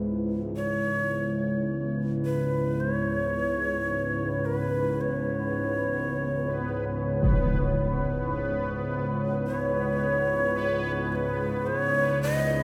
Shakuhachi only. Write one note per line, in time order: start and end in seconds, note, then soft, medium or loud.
0.56 1.63 C#5 medium
2.25 2.82 B4 medium
2.80 2.91 C5 loud
2.91 4.47 C#5 loud
4.45 5.02 B4 medium
5.01 7.22 C#5 medium
9.47 11.12 C#5 loud
11.12 11.68 B4 medium
11.12 11.16 C#5 medium
11.67 12.22 C#5 loud
12.23 12.34 D5 loud
12.34 12.63 D#5 loud